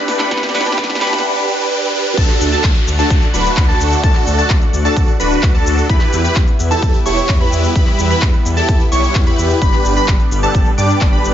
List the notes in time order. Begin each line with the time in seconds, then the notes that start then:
Already playing: A3 D4 E4 G4 B4 D5 E5 B5, riser
0.08 snare, open hi-hat
0.19 G3 B3 D4 G4 B4 D5 B5, snare, closed hi-hat
0.31 G3 B3 D4 G4 B4 F#5 B5, kick, snare, closed hi-hat
0.37 snare
0.43 snare, closed hi-hat
0.49 snare
0.54 A1 G3 B3 D4 G4 B4 B5, snare, open hi-hat
0.60 snare
0.66 snare, closed hi-hat
0.72 snare
0.77 G3 B3 D4 G4 B4 B5, kick, snare, closed hi-hat
0.84 snare
0.90 snare, closed hi-hat
0.95 snare
1.00 A1 G3 B3 D4 G4 B4 B5, snare, open hi-hat
1.07 snare
1.13 snare, closed hi-hat
1.19 snare
1.24 D4 G4 B4
1.48 D4 G4 B4
1.71 D4 G4 B4
1.94 D4 G4 B4
2.17 D2 A3 D4 F#4 A4 D5 F#5 A5, kick, closed hi-hat, crash, downlifter, cabasa
2.29 clap, closed hi-hat
2.41 D2, open hi-hat, cabasa
2.52 D4 F#4 A4 A5, closed hi-hat, cabasa
2.64 D2, kick, clap, closed hi-hat, cabasa
2.76 closed hi-hat
2.87 D2, open hi-hat, cabasa
2.99 D4 F#4 A4 A5, closed hi-hat, cabasa
3.10 D2, kick, closed hi-hat, cabasa
3.22 closed hi-hat
3.34 D1 D4 F#4 B4 B5, open hi-hat, cabasa
3.45 closed hi-hat, cabasa
3.57 D2, kick, clap, closed hi-hat, cabasa
3.68 D4 F#4 A4 A5
3.80 D2, open hi-hat, cabasa
3.92 closed hi-hat, cabasa
4.03 D2 D4 F#4 A4 A5, kick, closed hi-hat, cabasa
4.15 clap, closed hi-hat
4.27 D2, open hi-hat, cabasa
4.38 D4 F#4 A4 A5, closed hi-hat, cabasa
4.50 D2, kick, clap, closed hi-hat, cabasa
4.62 closed hi-hat
4.73 D2, open hi-hat, cabasa
4.85 D4 F#4 A4 A5, closed hi-hat, cabasa
4.97 D2, kick, closed hi-hat, cabasa
5.08 closed hi-hat
5.20 D1 D4 F#4 B4 B5, open hi-hat, cabasa
5.31 closed hi-hat, cabasa
5.43 D2, kick, clap, closed hi-hat, cabasa
5.55 D4 F#4 A4 A5, closed hi-hat
5.66 D2, open hi-hat, cabasa
5.78 closed hi-hat, cabasa
5.89 E2 G3 B3 E4 G4 B4 E5 B5, kick, closed hi-hat, cabasa
6.01 clap, closed hi-hat
6.13 E2, open hi-hat, cabasa
6.24 E4 G4 B4 B5, closed hi-hat, cabasa
6.36 E2, kick, clap, closed hi-hat, cabasa
6.48 closed hi-hat
6.59 E2, open hi-hat, cabasa
6.71 E4 G4 A4 A5, closed hi-hat, cabasa
6.82 E2, kick, closed hi-hat, cabasa
6.94 closed hi-hat
7.06 E1 E4 G4 C#5 C#6, open hi-hat, cabasa
7.17 closed hi-hat, cabasa
7.29 E2, kick, clap, closed hi-hat, cabasa
7.41 E4 G4 B4 B5
7.52 E2, open hi-hat, cabasa
7.64 closed hi-hat, cabasa
7.76 E2 E4 G4 B4 B5, kick, closed hi-hat, cabasa
7.87 clap, closed hi-hat
7.99 E2, open hi-hat, cabasa
8.10 E4 G4 B4 B5, closed hi-hat, cabasa
8.22 E2, kick, clap, closed hi-hat, cabasa
8.34 closed hi-hat
8.45 E2, open hi-hat, cabasa
8.57 E4 G4 A4 A5, closed hi-hat, cabasa
8.69 E2, kick, closed hi-hat, cabasa
8.80 closed hi-hat
8.92 B1 E4 G4 C#5 C#6, open hi-hat, cabasa
9.04 closed hi-hat, cabasa
9.15 E2, kick, clap, closed hi-hat, cabasa
9.27 E4 G4 B4 B5, closed hi-hat
9.38 E2, open hi-hat, cabasa
9.50 closed hi-hat, cabasa
9.62 G1 B3 D4 G4 B4 D5 B5, kick, closed hi-hat, cabasa
9.73 clap, closed hi-hat
9.85 G1, open hi-hat, cabasa
9.97 D4 G4 B4 B5, closed hi-hat, cabasa
10.08 G1, kick, clap, closed hi-hat, cabasa
10.20 closed hi-hat
10.31 G1, open hi-hat, cabasa
10.43 D4 G4 A4 A5, closed hi-hat, cabasa
10.55 G1, kick, closed hi-hat, cabasa
10.66 closed hi-hat
10.78 G2 D4 G4 D5 D6, open hi-hat, cabasa
10.90 closed hi-hat, cabasa
11.01 G1, kick, clap, closed hi-hat, cabasa
11.13 D4 G4 B4 B5
11.24 G1, open hi-hat, cabasa